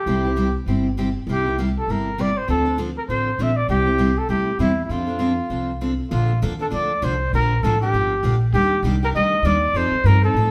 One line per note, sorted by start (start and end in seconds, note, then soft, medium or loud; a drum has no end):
0.00 0.56 G4 medium
0.06 0.55 C2 medium
0.06 0.23 C3 medium
0.06 0.24 G3 medium
0.06 0.24 C4 medium
0.06 0.24 E4 medium
0.06 0.23 G4 medium
0.24 0.36 C4 soft
0.24 0.36 E4 soft
0.24 0.36 G4 soft
0.36 0.47 C3 medium
0.36 0.47 G3 medium
0.36 0.47 C4 medium
0.36 0.47 E4 medium
0.36 0.47 G4 medium
0.66 1.15 G1 medium
0.66 0.86 C3 medium
0.66 0.86 G3 medium
0.66 0.87 C4 medium
0.66 0.87 E4 medium
0.66 0.87 G4 medium
0.97 1.08 C3 medium
0.97 1.08 G3 medium
0.97 1.08 C4 medium
0.97 1.08 E4 medium
0.97 1.08 G4 medium
1.27 1.75 C2 medium
1.27 1.45 C3 medium
1.27 1.45 G3 medium
1.27 1.45 A#3 medium
1.27 1.45 E4 medium
1.27 1.45 G4 medium
1.32 1.58 G4 medium
1.46 1.57 A#3 soft
1.46 1.58 E4 soft
1.46 1.58 G4 soft
1.58 1.69 C3 medium
1.58 1.69 G3 medium
1.58 1.68 A#3 medium
1.58 1.69 E4 medium
1.58 1.69 G4 medium
1.78 1.93 A4 medium
1.87 2.36 G1 medium
1.87 2.08 C3 medium
1.87 2.08 G3 medium
1.87 2.08 A#3 medium
1.87 2.08 E4 medium
1.87 2.08 G4 medium
1.87 2.22 A#4 medium
2.18 2.29 C3 medium
2.18 2.29 G3 medium
2.18 2.29 A#3 medium
2.18 2.29 E4 medium
2.18 2.29 G4 medium
2.18 2.39 D5 medium
2.37 2.49 C5 medium
2.48 2.97 D2 medium
2.48 2.65 D3 medium
2.48 2.65 F3 medium
2.48 2.65 C4 medium
2.48 2.65 D4 medium
2.48 2.64 A4 medium
2.48 2.77 A4 medium
2.65 2.77 C4 soft
2.65 2.78 D4 soft
2.65 2.78 A4 soft
2.78 2.89 D3 medium
2.78 2.89 F3 medium
2.78 2.89 C4 medium
2.78 2.89 D4 medium
2.78 2.89 A4 medium
2.97 3.03 A#4 medium
3.08 3.34 A1 medium
3.08 3.28 D3 medium
3.08 3.28 F3 medium
3.08 3.29 C4 medium
3.08 3.29 D4 medium
3.08 3.29 A4 medium
3.08 3.44 C5 medium
3.38 3.64 A#1 medium
3.38 3.50 D3 medium
3.38 3.50 F3 medium
3.38 3.50 C4 medium
3.38 3.50 D4 medium
3.38 3.50 A4 medium
3.42 3.58 E5 medium
3.57 3.69 D5 medium
3.68 4.17 C2 medium
3.68 3.86 C3 medium
3.68 3.86 G3 medium
3.68 3.86 C4 medium
3.68 3.85 E4 medium
3.68 4.20 G4 medium
3.68 3.84 G4 medium
3.86 3.98 C4 soft
3.86 3.98 E4 soft
3.86 3.98 G4 soft
3.98 4.10 C3 medium
3.98 4.09 G3 medium
3.98 4.10 C4 medium
3.98 4.10 E4 medium
3.98 4.10 G4 medium
4.18 4.29 A4 medium
4.29 4.55 D2 medium
4.29 4.48 C3 medium
4.29 4.49 G3 medium
4.29 4.49 C4 medium
4.29 4.49 E4 medium
4.29 4.49 G4 medium
4.29 4.58 G4 medium
4.59 4.85 E2 medium
4.59 4.70 C3 medium
4.59 4.70 G3 medium
4.59 4.70 C4 medium
4.59 4.71 E4 medium
4.59 4.83 E4 medium
4.59 4.71 G4 medium
4.85 4.92 E4 medium
4.89 5.38 F2 medium
4.89 5.07 F3 medium
4.89 5.07 C4 medium
4.89 5.07 D4 medium
4.89 5.81 F4 medium
4.89 5.06 A4 medium
5.07 5.18 C4 soft
5.07 5.19 D4 soft
5.07 5.19 A4 soft
5.19 5.30 F3 medium
5.19 5.30 C4 medium
5.19 5.31 D4 medium
5.19 5.31 A4 medium
5.50 5.99 C2 medium
5.50 5.70 F3 medium
5.50 5.70 C4 medium
5.50 5.70 D4 medium
5.50 5.70 A4 medium
5.81 5.92 F3 medium
5.81 5.92 C4 medium
5.81 5.92 D4 medium
5.81 5.92 A4 medium
6.11 6.41 A#1 medium
6.11 6.30 D3 medium
6.11 6.31 F3 medium
6.11 6.31 A#3 medium
6.11 6.31 D4 medium
6.11 6.40 F4 medium
6.11 6.31 A4 medium
6.42 6.71 D#2 medium
6.42 6.52 D3 medium
6.42 6.53 F3 medium
6.42 6.53 A#3 medium
6.42 6.53 D4 medium
6.42 6.53 A4 medium
6.59 6.70 A#3 soft
6.59 6.70 D4 soft
6.59 6.71 A4 medium
6.59 6.66 A4 medium
6.70 7.01 D2 medium
6.70 6.90 D3 medium
6.70 6.91 F3 medium
6.70 6.91 A#3 medium
6.70 6.91 D4 medium
6.70 6.91 A4 medium
6.70 7.05 D5 medium
7.02 7.31 C2 medium
7.02 7.13 D3 medium
7.02 7.13 F3 medium
7.02 7.13 A#3 medium
7.02 7.13 D4 medium
7.02 7.13 A4 medium
7.02 7.33 C5 medium
7.33 7.62 A#1 medium
7.33 7.52 D3 medium
7.33 7.52 F3 medium
7.33 7.53 A#3 medium
7.33 7.53 D4 medium
7.33 7.53 G4 medium
7.33 7.65 A#4 medium
7.63 7.92 A1 medium
7.63 7.74 D3 medium
7.63 7.74 F3 medium
7.63 7.74 A#3 medium
7.63 7.74 D4 medium
7.63 7.74 G4 medium
7.63 7.81 A4 medium
7.81 7.93 A#3 soft
7.81 7.93 D4 soft
7.81 8.37 G4 medium
7.81 7.93 G4 medium
7.93 8.22 G1 medium
7.93 8.12 D3 medium
7.93 8.13 F3 medium
7.93 8.13 A#3 medium
7.93 8.13 D4 medium
7.93 8.13 G4 medium
8.23 8.52 A#1 medium
8.23 8.34 D3 medium
8.23 8.34 F3 medium
8.23 8.34 A#3 medium
8.23 8.34 D4 medium
8.23 8.34 G4 medium
8.53 8.82 D#2 medium
8.53 8.73 D#3 medium
8.53 8.73 G3 medium
8.53 8.73 A#3 medium
8.53 8.73 D4 medium
8.53 8.82 G4 medium
8.53 8.73 G4 medium
8.83 9.12 C2 medium
8.83 8.94 D#3 medium
8.83 8.95 G3 medium
8.83 8.95 A#3 medium
8.83 8.95 D4 medium
8.83 8.95 G4 medium
9.03 9.14 A#3 soft
9.03 9.14 D4 soft
9.03 9.14 G4 medium
9.03 9.09 A#4 medium
9.13 9.42 D2 medium
9.13 9.34 D#3 medium
9.13 9.34 G3 medium
9.13 9.34 A#3 medium
9.13 9.34 D4 medium
9.13 9.34 G4 medium
9.13 9.47 D#5 loud
9.43 9.73 D#2 medium
9.43 9.55 D#3 medium
9.43 9.55 G3 medium
9.43 9.55 A#3 medium
9.43 9.55 D4 medium
9.43 9.55 G4 medium
9.43 9.78 D5 medium
9.73 9.90 F2 medium
9.73 9.94 F3 medium
9.73 9.94 C4 medium
9.73 9.94 D#4 medium
9.73 9.94 A4 medium
9.73 10.08 C5 loud
9.91 muted upright bass stroke soft
10.04 10.33 G2 medium
10.04 10.15 F3 medium
10.04 10.16 C4 medium
10.04 10.16 D#4 medium
10.04 10.16 A4 medium
10.04 10.23 A#4 loud
10.23 10.36 C4 soft
10.23 10.35 D#4 soft
10.23 10.35 A4 medium
10.23 10.51 A4 medium
10.34 10.51 A2 medium
10.34 10.51 F3 medium
10.34 10.51 C4 medium
10.34 10.51 D#4 medium
10.34 10.51 A4 medium